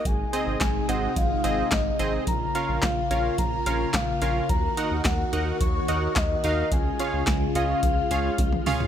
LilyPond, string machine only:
\new Staff \with { instrumentName = "String machine" } { \clef bass \time 4/4 \key ees \dorian \tempo 4 = 108 << { <c ees'>1 | <des f'>1 | <ees ges'>1 | <des f'>1 | } \\ { aes1 | bes1~ | bes1 | aes1 | } >> }